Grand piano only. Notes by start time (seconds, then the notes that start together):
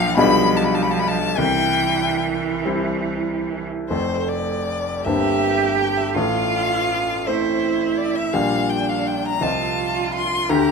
Already playing: A#1 A#2 F3 D4 F4
0.17 B1 B2 G3 D4 F4
1.38 C2 C3
2.65 G3 C4 E4
3.90 F1 F2 A3 C4 A4
5.06 G1 G2 A#3 C4 C5
6.16 A1 A2
7.27 A3 C4 C5
8.34 A#1 A#2 G3 F4 D5
9.41 C2 C3 F3 F4 D#5
10.50 D2 D3